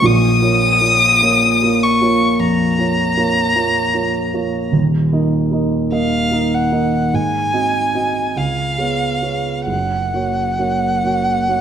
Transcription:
0.02 grand piano A#1 A#2, violin D#6
0.42 grand piano A#3 F4 C#5
0.81 grand piano A#3 F4 C#5
1.22 grand piano A#3 F4 C#5
1.62 grand piano A#3 F4 C#5
1.83 violin C#6
2.01 grand piano A#3 F4 C#5
2.39 grand piano F2, violin A#5
2.79 grand piano A#3 F4 C#5
3.17 grand piano A#3 F4 C#5
3.56 grand piano A#3 F4 C#5
3.94 grand piano A#3 F4 C#5
4.34 grand piano A#3 F4 C#5
4.72 grand piano D#1 D#2
5.13 grand piano A#3 D#4 D#5
5.52 grand piano A#3 D#4 D#5
5.92 grand piano A#3 D#4 D#5, violin F5
6.32 grand piano A#3 D#4 D#5
6.54 violin F#5
6.72 grand piano A#3 D#4 D#5
7.13 grand piano G#2, violin G#5
7.53 grand piano C4 F#4 D#5
7.95 grand piano C4 F#4 D#5
8.36 grand piano C#2, violin F5
8.78 grand piano B3 G#4 C#5
9.22 grand piano B3 G#4 C#5
9.66 grand piano F#1 F#2, violin F#5
10.14 grand piano A#3 F#4 C#5
10.59 grand piano A#3 F#4 C#5
11.04 grand piano A#3 F#4 C#5
11.49 grand piano A#3 F#4 C#5

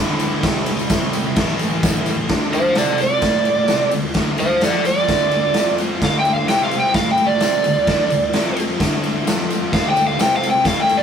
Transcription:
Already playing: distorted electric guitar D2 A2
0.00 distorted electric guitar D3
0.19 ride, tambourine
0.43 distorted electric guitar C3 G3 C4, kick, snare, ride
0.55 tambourine
0.66 ride, tambourine
0.79 tambourine
0.89 kick, snare, ride, tambourine
1.13 ride, tambourine
1.36 distorted electric guitar A2 E3 A3, kick, snare, ride
1.49 tambourine
1.59 ride, tambourine
1.73 tambourine
1.83 kick, snare, ride, tambourine
2.06 ride, tambourine
2.29 distorted electric guitar D2 D3, kick, snare, ride
2.53 electric slide guitar C5 F5, ride, tambourine
2.75 distorted electric guitar C3 C4, electric slide guitar A4 D5, snare, ride, tambourine
2.98 ride, tambourine
3.02 electric slide guitar D5
3.22 distorted electric guitar A2 A3, kick, snare, ride, tambourine
3.45 ride, tambourine
3.68 distorted electric guitar C3 C4, snare, ride, tambourine
3.91 distorted electric guitar D2, ride, tambourine
4.14 distorted electric guitar D2 D3, kick, snare, ride
4.38 distorted electric guitar D2, electric slide guitar C5 F5, ride, tambourine
4.61 distorted electric guitar F2 F3, electric slide guitar A4 D5, snare, ride, tambourine
4.85 electric slide guitar D5, ride, tambourine
5.08 distorted electric guitar D2 D3, kick, snare, ride, tambourine
5.31 ride, tambourine
5.54 distorted electric guitar F2 F3, snare, ride, tambourine
5.78 ride, tambourine
6.02 distorted electric guitar D2 D3, electric slide guitar F5, kick, snare, ride
6.19 electric slide guitar G5
6.25 ride, tambourine
6.33 electric slide guitar F5
6.48 distorted electric guitar C3 C4, electric slide guitar G5, snare, ride, tambourine
6.64 electric slide guitar F5
6.71 ride, tambourine
6.80 electric slide guitar G5
6.94 distorted electric guitar A2 A3, electric slide guitar F5, kick, snare, ride, tambourine
7.11 electric slide guitar G5
7.17 ride, tambourine
7.27 electric slide guitar D5
7.40 distorted electric guitar C3 C4, snare, ride, tambourine
7.64 distorted electric guitar D2, ride, tambourine
7.87 distorted electric guitar D2 D3, kick, snare, ride, tambourine
8.10 distorted electric guitar D2, ride, tambourine
8.33 distorted electric guitar F2 F3, snare, ride, tambourine
8.57 ride, tambourine
8.80 distorted electric guitar D2 D3, kick, snare, ride, tambourine
9.04 ride, tambourine
9.26 distorted electric guitar F2 F3, snare, ride, tambourine
9.50 ride, tambourine
9.72 distorted electric guitar D2 D3, electric slide guitar F5, kick, snare, crash
9.90 electric slide guitar G5
9.96 ride, tambourine
10.07 electric slide guitar F5
10.19 distorted electric guitar C3 C4, electric slide guitar G5, snare, ride, tambourine
10.36 electric slide guitar F5
10.43 ride, tambourine
10.51 electric slide guitar G5
10.65 distorted electric guitar A2 A3, electric slide guitar F5, kick, snare, ride, tambourine
10.82 electric slide guitar G5
10.89 ride, tambourine
10.97 electric slide guitar D5

